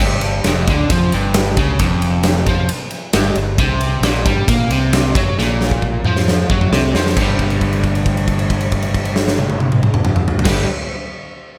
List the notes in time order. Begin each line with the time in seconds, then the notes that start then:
0.00 G1 G2, kick
0.21 ride
0.44 F1 F2, snare, ride
0.67 D2 D3, kick, ride
0.89 F2 F3, kick, ride
1.12 G1 G2, ride
1.34 snare, ride
1.57 C#2 C#3, kick, ride
1.79 F1 F2, kick, ride
2.02 ride
2.23 snare, ride
2.46 F2 F3, kick, ride
2.69 ride
2.91 ride
3.13 G1 G2, snare, ride
3.35 G1 G2, ride
3.57 C2 C3, kick, ride
3.81 ride
4.01 A#1 A#2, snare, ride
4.25 G2 G3, kick, ride
4.47 A#2 A#3, kick, ride
4.68 C2 C3, ride
4.93 snare, ride
5.14 F#2 F#3, kick, ride
5.37 A#1 A#2, snare
5.61 snare
5.71 kick
5.82 kick
6.03 F2 F3, mid tom
6.17 snare
6.28 snare
6.49 F#2 F#3, kick
6.61 mid tom
6.71 C2 C3, snare
6.94 F2 F3, snare
7.06 snare
7.16 G1 G2 D3, kick, crash
7.22 G3
7.39 kick, crash
7.50 crash
7.61 kick, crash
7.73 crash
7.84 kick, crash
7.95 crash
8.06 kick, crash
8.17 crash
8.28 kick, crash
8.39 crash
8.50 kick, crash
8.61 crash
8.72 kick, crash
8.82 crash
8.94 kick, crash
9.05 crash
9.16 snare
9.28 snare
9.38 high tom
9.50 high tom
9.60 high tom
9.72 mid tom
9.83 mid tom
9.94 mid tom
10.05 mid tom
10.16 mid tom
10.28 floor tom
10.39 floor tom
10.45 G1 G2 D3, kick, snare, crash
10.49 G3